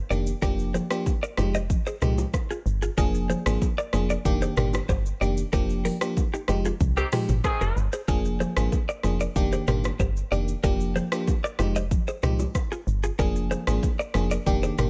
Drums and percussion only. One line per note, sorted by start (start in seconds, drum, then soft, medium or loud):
0.11 shaker medium
0.27 shaker loud
0.42 kick loud
0.42 low conga medium
0.42 shaker medium
0.59 shaker medium
0.74 low bongo medium
0.74 low conga medium
0.74 shaker medium
0.91 cross-stick loud
0.91 shaker loud
1.06 kick loud
1.06 high bongo medium
1.06 shaker medium
1.23 shaker soft
1.37 cross-stick loud
1.37 high bongo medium
1.37 low bongo medium
1.37 shaker medium
1.54 shaker loud
1.70 kick loud
1.70 low conga medium
1.70 shaker medium
1.87 shaker medium
2.02 cross-stick medium
2.02 mid tom loud
2.02 shaker medium
2.18 low bongo medium
2.18 shaker medium
2.34 kick medium
2.34 cross-stick medium
2.34 high bongo medium
2.34 shaker medium
2.51 shaker soft
2.66 shaker medium
2.82 shaker loud
2.97 kick loud
2.97 low conga medium
2.97 shaker medium
3.15 shaker medium
3.30 low bongo medium
3.30 low conga medium
3.30 shaker medium
3.46 cross-stick loud
3.46 shaker loud
3.62 kick loud
3.62 high bongo medium
3.62 shaker medium
3.79 shaker medium
3.93 cross-stick loud
3.93 high bongo medium
3.93 low bongo medium
3.93 shaker medium
4.10 shaker loud
4.25 kick loud
4.25 low conga medium
4.25 shaker medium
4.42 shaker medium
4.57 cross-stick loud
4.57 mid tom loud
4.57 shaker medium
4.73 cross-stick loud
4.73 low bongo medium
4.73 shaker medium
4.89 kick medium
4.89 high bongo medium
4.89 shaker medium
5.06 shaker soft
5.22 shaker medium
5.37 shaker loud
5.53 kick loud
5.53 low conga medium
5.53 shaker medium
5.70 shaker medium
5.85 open hi-hat medium
5.85 low bongo medium
5.85 low conga medium
5.85 shaker medium
6.01 cross-stick loud
6.01 shaker loud
6.17 kick loud
6.17 high bongo medium
6.17 shaker medium
6.34 shaker medium
6.48 cross-stick loud
6.48 high bongo medium
6.48 low bongo medium
6.48 shaker medium
6.65 shaker loud
6.80 kick loud
6.80 low conga medium
6.80 shaker medium
6.97 shaker medium
7.12 cross-stick loud
7.12 mid tom loud
7.12 open hi-hat medium
7.12 shaker medium
7.29 mid tom loud
7.29 low bongo medium
7.29 shaker medium
7.44 kick medium
7.44 cross-stick medium
7.44 high bongo medium
7.44 shaker medium
7.61 shaker soft
7.77 shaker medium
7.93 shaker loud
8.08 kick loud
8.08 low conga medium
8.08 shaker medium
8.25 shaker medium
8.40 low bongo medium
8.40 low conga medium
8.40 shaker medium
8.57 cross-stick loud
8.57 shaker loud
8.72 kick loud
8.72 high bongo medium
8.72 shaker medium
8.89 shaker soft
9.03 cross-stick medium
9.03 high bongo medium
9.03 low bongo medium
9.03 shaker medium
9.21 shaker loud
9.36 kick loud
9.36 low conga medium
9.36 shaker medium
9.52 shaker medium
9.68 cross-stick loud
9.68 mid tom loud
9.68 shaker medium
9.84 cross-stick loud
9.84 low bongo medium
9.84 shaker medium
10.00 kick medium
10.00 high bongo medium
10.00 shaker medium
10.17 shaker soft
10.32 shaker medium
10.48 shaker medium
10.63 kick loud
10.63 low conga medium
10.63 shaker medium
10.80 shaker medium
10.96 low bongo medium
10.96 low conga medium
10.96 shaker medium
11.12 cross-stick loud
11.12 shaker loud
11.27 kick loud
11.27 high bongo medium
11.27 shaker medium
11.45 shaker medium
11.59 cross-stick loud
11.59 high bongo medium
11.59 low bongo medium
11.59 shaker medium
11.76 shaker loud
11.91 kick loud
11.91 low conga medium
11.91 shaker medium
12.08 shaker medium
12.23 cross-stick medium
12.23 mid tom loud
12.23 shaker medium
12.39 low bongo medium
12.39 shaker medium
12.55 kick medium
12.55 cross-stick medium
12.55 high bongo medium
12.55 shaker medium
12.72 shaker soft
12.88 shaker medium
13.03 shaker loud
13.19 kick loud
13.19 low conga medium
13.19 shaker medium
13.36 shaker medium
13.51 low bongo medium
13.51 low conga medium
13.51 shaker medium
13.67 cross-stick loud
13.67 shaker loud
13.83 kick loud
13.83 high bongo medium
13.83 shaker medium
14.00 shaker soft
14.14 cross-stick loud
14.14 high bongo medium
14.14 low bongo medium
14.14 shaker medium
14.31 shaker loud
14.47 kick loud
14.47 low conga medium
14.47 shaker medium
14.63 shaker medium
14.78 cross-stick medium
14.78 mid tom loud
14.78 shaker medium